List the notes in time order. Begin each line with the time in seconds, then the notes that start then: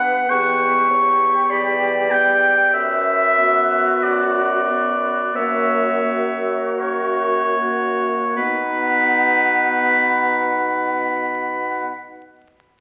Already playing: G2 B3 B4 F#5
0.29 E2 B3 G4 B4 C#6
0.90 B3 G4 C#5
1.50 E2 D5 B5
2.10 B3 G4 G5
2.73 F#2 B4 E5
3.38 B3 F#4
4.03 F#2 D5
4.69 B3 F#4
5.35 F#2 A#3 F#4 C#5 E5
6.05 A#3 F#4
6.79 F#2 A#4 C#5
7.59 A#3 F#4
8.36 B2 B3 D#4 B4 F#5